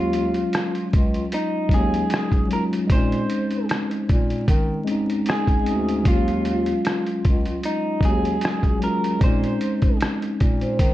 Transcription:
Already playing: bass clarinet D#2, tine electric piano F#3 G#3 C#4 F4, clean electric guitar F4
0.13 closed hi-hat
0.34 closed hi-hat
0.53 cross-stick, closed hi-hat
0.75 closed hi-hat
0.93 bass clarinet C#2, kick, closed hi-hat
1.14 closed hi-hat
1.32 clean electric guitar D#4, closed hi-hat
1.69 bass clarinet D#2, tine electric piano F#3 G#3, kick, closed hi-hat
1.73 tine electric piano C#4 D#4, clean electric guitar G#4
1.94 closed hi-hat
2.10 cross-stick, closed hi-hat
2.32 kick, closed hi-hat
2.48 tine electric piano F#3 G#3, closed hi-hat
2.52 tine electric piano C#4 F4, clean electric guitar A#4
2.73 closed hi-hat
2.87 bass clarinet A#2, tine electric piano G#3 C4, kick, closed hi-hat
2.92 tine electric piano C#4 D#4, clean electric guitar C5
3.12 closed hi-hat
3.30 closed hi-hat
3.51 closed hi-hat
3.69 cross-stick, closed hi-hat
3.91 closed hi-hat
4.09 bass clarinet A#2, kick, closed hi-hat
4.30 closed hi-hat
4.48 bass clarinet D#3, kick, closed hi-hat
4.84 tine electric piano G#3 C4, closed hi-hat
4.89 tine electric piano C#4 D#4
5.10 closed hi-hat
5.26 clean electric guitar G#4, cross-stick, closed hi-hat
5.47 kick, closed hi-hat
5.63 bass clarinet D2, tine electric piano G#3 C4, closed hi-hat
5.67 tine electric piano C#4 D#4
5.89 closed hi-hat
6.03 bass clarinet D#2, tine electric piano F#3 G#3, kick, closed hi-hat
6.07 tine electric piano C#4 F4, clean electric guitar F4
6.28 closed hi-hat
6.45 closed hi-hat
6.66 closed hi-hat
6.85 cross-stick, closed hi-hat
7.07 closed hi-hat
7.25 bass clarinet C#2, kick, closed hi-hat
7.46 closed hi-hat
7.63 clean electric guitar D#4, closed hi-hat
8.00 bass clarinet D#2, tine electric piano F#3 G#3, kick, closed hi-hat
8.05 tine electric piano C#4 F#4, clean electric guitar G#4
8.13 tine electric piano G#4
8.25 closed hi-hat
8.41 cross-stick, closed hi-hat
8.63 kick, closed hi-hat
8.79 tine electric piano F#3 G#3, closed hi-hat
8.84 tine electric piano C#4 F4, clean electric guitar A#4
9.04 closed hi-hat
9.19 bass clarinet A#2, tine electric piano G#3 C4, kick, closed hi-hat
9.23 tine electric piano C#4 D#4, clean electric guitar C5
9.44 closed hi-hat
9.61 closed hi-hat
9.82 kick, closed hi-hat
10.01 cross-stick, closed hi-hat
10.22 closed hi-hat
10.40 bass clarinet A#2, kick, closed hi-hat
10.61 vibraphone C5, closed hi-hat
10.79 bass clarinet D#3, kick, closed hi-hat

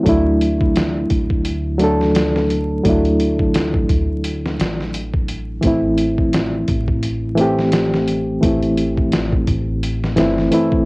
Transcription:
0.03 upright bass D2, reed electric piano F#3 A3, kick, closed hi-hat
0.07 reed electric piano D4 E4
0.41 closed hi-hat
0.61 kick
0.76 snare, closed hi-hat
1.10 upright bass D2, kick, closed hi-hat
1.30 kick
1.45 closed hi-hat
1.78 reed electric piano F#3 A3 D4, closed hi-hat
1.84 reed electric piano A4
2.01 snare
2.15 snare, closed hi-hat
2.36 snare
2.50 closed hi-hat
2.83 upright bass D2, reed electric piano F#3 A3 D4, kick, closed hi-hat
2.89 reed electric piano E4
3.05 closed hi-hat
3.20 closed hi-hat
3.39 kick
3.54 snare, closed hi-hat
3.74 kick
3.89 upright bass D2, kick, closed hi-hat
4.24 closed hi-hat
4.46 snare
4.59 upright bass A1, snare, closed hi-hat
4.80 snare
4.94 closed hi-hat
5.14 kick
5.28 closed hi-hat
5.61 upright bass A1, reed electric piano E3 A3 C4, kick, closed hi-hat
5.67 reed electric piano E4
5.98 closed hi-hat
6.18 kick
6.33 snare, closed hi-hat
6.68 upright bass A1, kick, closed hi-hat
6.88 kick
7.03 closed hi-hat
7.35 reed electric piano E3 A3, closed hi-hat
7.39 reed electric piano C4 G4
7.59 snare
7.72 snare, closed hi-hat
7.94 snare
8.08 closed hi-hat
8.41 upright bass A1, reed electric piano E3 A3 C4, kick, closed hi-hat
8.46 reed electric piano E4
8.63 closed hi-hat
8.78 closed hi-hat
8.98 kick
9.12 snare, closed hi-hat
9.33 kick
9.47 upright bass A1, kick, closed hi-hat
9.83 closed hi-hat
10.04 snare
10.16 upright bass G1, reed electric piano E3 A3 C4 E4, snare, closed hi-hat
10.38 snare
10.51 reed electric piano E3 A3 C4 E4, closed hi-hat
10.72 kick

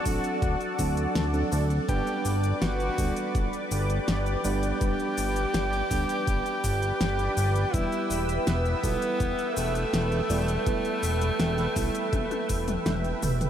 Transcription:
Already playing: tenor saxophone F#4, analog synth pad A4 D5 F#5 A5
0.06 analog synth bass A1, fm electric piano F#3 C4 D4 A4, kick, open hi-hat, shaker
0.24 closed hi-hat, shaker
0.42 analog synth bass D2, kick, closed hi-hat, shaker
0.61 closed hi-hat, shaker
0.79 analog synth bass D2, fm electric piano F#3 C4 D4 A4, kick, open hi-hat, shaker
0.97 closed hi-hat, shaker
1.15 analog synth bass D2, snare, closed hi-hat, shaker
1.34 fm electric piano F#3 C4 D4 A4, closed hi-hat, shaker
1.52 analog synth bass D2, open hi-hat, shaker
1.70 closed hi-hat, shaker
1.88 analog synth bass G1, fm electric piano G3 B3 D4 B4, tenor saxophone G4, analog synth pad B4 D6, kick, closed hi-hat, shaker
2.07 closed hi-hat, shaker
2.25 analog synth bass G1, open hi-hat, shaker
2.44 closed hi-hat, shaker
2.62 analog synth bass G1, tenor saxophone F#4, snare, closed hi-hat, shaker
2.80 closed hi-hat, shaker
2.98 analog synth bass D2, fm electric piano G3 B3 D4 A4, kick, open hi-hat, shaker
3.16 closed hi-hat, shaker
3.35 analog synth bass G1, kick, closed hi-hat, shaker
3.53 closed hi-hat, shaker
3.71 analog synth bass G1, tenor saxophone G4, open hi-hat, shaker
3.90 closed hi-hat, shaker
4.08 analog synth bass G1, snare, closed hi-hat, shaker
4.26 closed hi-hat, shaker
4.45 analog synth bass G1, fm electric piano G3 B3 D4 D5, open hi-hat, shaker
4.63 closed hi-hat, shaker
4.81 analog synth bass G1, fm electric piano G3 B3 D4 B4, kick, closed hi-hat, shaker
5.00 closed hi-hat, shaker
5.18 analog synth bass G1, open hi-hat, shaker
5.36 closed hi-hat, shaker
5.54 analog synth bass G1, snare, closed hi-hat, shaker
5.73 closed hi-hat, shaker
5.91 analog synth bass D2, fm electric piano G3 B3 D4 B4, kick, open hi-hat, shaker
6.09 closed hi-hat, shaker
6.27 analog synth bass G1, kick, closed hi-hat, shaker
6.46 closed hi-hat, shaker
6.64 analog synth bass G1, kick, open hi-hat, shaker
6.82 closed hi-hat, shaker
7.01 analog synth bass G1, snare, closed hi-hat, shaker
7.19 closed hi-hat, shaker
7.37 analog synth bass G1, open hi-hat, shaker
7.56 closed hi-hat, shaker
7.74 analog synth bass E1, fm electric piano G3 B3 E4 B4, tenor saxophone E4, analog synth pad E5 G5 E6, kick, closed hi-hat, shaker
7.92 closed hi-hat, shaker
8.10 analog synth bass E1, open hi-hat, shaker
8.29 closed hi-hat, shaker
8.47 analog synth bass E1, tenor saxophone B3, snare, closed hi-hat, shaker
8.65 closed hi-hat, shaker
8.83 analog synth bass B1, fm electric piano G3 B3 E4 A4, kick, open hi-hat, shaker
9.02 closed hi-hat, shaker
9.20 analog synth bass E1, kick, closed hi-hat, shaker
9.39 closed hi-hat, shaker
9.57 analog synth bass E1, tenor saxophone A3, open hi-hat, shaker
9.75 closed hi-hat, shaker
9.93 analog synth bass E1, snare, closed hi-hat, shaker
10.12 closed hi-hat, shaker
10.30 analog synth bass E1, fm electric piano G3 B3 E4 D5, open hi-hat, shaker
10.48 closed hi-hat, shaker
10.67 analog synth bass E1, fm electric piano G3 B3 E4 B4, kick, closed hi-hat, shaker
10.85 closed hi-hat, shaker
11.03 analog synth bass E1, open hi-hat, shaker
11.21 closed hi-hat, shaker
11.40 analog synth bass E1, snare, closed hi-hat, shaker
11.58 snare, closed hi-hat, shaker
11.76 analog synth bass B1, fm electric piano G3 B3 E4 B4, kick, open hi-hat, shaker
11.95 closed hi-hat, shaker
12.13 analog synth bass E1, kick, closed hi-hat, high tom, shaker
12.31 closed hi-hat, high tom, shaker
12.49 analog synth bass E1, kick, open hi-hat, shaker
12.68 closed hi-hat, mid tom, shaker
12.86 analog synth bass E1, snare, closed hi-hat, mid tom, shaker
13.04 closed hi-hat, shaker
13.23 analog synth bass E1, mid tom, open hi-hat, shaker
13.41 closed hi-hat, mid tom, shaker

